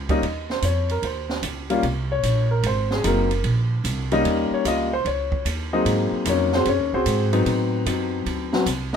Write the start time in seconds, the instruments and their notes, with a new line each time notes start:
Already playing: upright bass C#2
0.09 grand piano G3 A#3 C#4 D#4 D#5, kick, ride
0.22 upright bass D#2, kick, ride
0.50 grand piano C5, snare
0.62 upright bass F2, grand piano C#5, kick, hi-hat pedal, ride
0.89 grand piano A#4, ride
1.02 upright bass D#2, grand piano C5, kick, ride
1.29 snare
1.42 upright bass C#2, kick, hi-hat pedal, ride
1.70 grand piano G3 A#3 C#4 F4, ride
1.83 upright bass C2, kick, ride
2.12 grand piano C#5
2.23 upright bass A#1, kick, hi-hat pedal, ride
2.51 grand piano A#4
2.63 upright bass G#1, grand piano C5, kick, ride
2.91 grand piano G#4, snare
3.03 upright bass F#1, grand piano F#3 A#3 C4 D#4 A#4, kick, hi-hat pedal, ride
3.31 ride
3.44 upright bass A#1, kick, ride
3.84 upright bass C2, kick, hi-hat pedal, ride
4.11 grand piano G3 A#3 C#4 D#4 D#5, ride
4.25 upright bass D#2, kick, ride
4.51 grand piano C#5, muted upright bass stroke
4.65 upright bass C#2, grand piano G3 A#3 C#4 F4 D#5, kick, hi-hat pedal, ride
4.93 grand piano C5
5.05 upright bass C#2, grand piano C#5, kick, ride
5.32 kick
5.45 upright bass D#2, kick, hi-hat pedal, ride
5.73 grand piano F#3 A#3 C4 D#4 G#4 C5 D#5
5.85 upright bass G#2, kick, ride
6.12 muted upright bass stroke
6.25 upright bass F2, grand piano F#3 A#3 C4 D#4, kick, hi-hat pedal, ride
6.29 grand piano C#4 C#5
6.52 grand piano C4 F#4 G#4 C5, snare
6.65 upright bass F#2, grand piano C#4 C#5, kick, ride
6.79 upright bass D#2
6.93 upright bass C2, grand piano C4 F#4 G#4 C5
7.06 upright bass G#2, kick, hi-hat pedal, ride
7.32 grand piano F#3 B3 C4 D#4, ride
7.46 upright bass A2, kick, ride
7.86 upright bass F#2, grand piano F#3 B3 C4 D#4, kick, hi-hat pedal, ride
8.26 upright bass D2, kick, ride
8.53 grand piano F#3 B3 C4 F#4, snare
8.66 upright bass C2, kick, hi-hat pedal, ride
8.93 snare